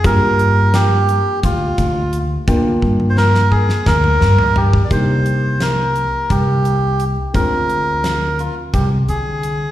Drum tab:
HH |x-x-x-x-x-x-x-|x-------------|x-x-x-x-x-x-x-|x-x-x-x-x-x-x-|
SD |----o---------|----oo-oo-o---|----o---------|----o---------|
T1 |--------------|---o----------|--------------|--------------|
T2 |--------------|---------o----|--------------|--------------|
FT |--------------|-----------oo-|--------------|--------------|
BD |o-------o-o---|o-o---o-o----o|o-------o-----|o-------o-----|